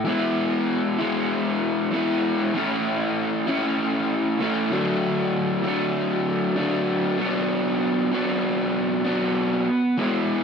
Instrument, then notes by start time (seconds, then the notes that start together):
overdriven electric guitar
0.05 E3 G#3 B3 E4
0.99 E3 G#3 B3 E4
1.91 E3 G#3 B3 E4
2.54 E3 A3 C#4 E4
3.47 E3 A3 C#4 E4
4.40 E3 A3 C#4 E4
4.71 D3 F#3 A3 D4
5.63 D3 F#3 A3 D4
6.56 D3 F#3 A3 D4
7.18 B2 F#3 B3 D4
8.12 B2 F#3 B3 D4
9.04 B2 F#3 B3 D4
9.97 E3 G#3 B3 E4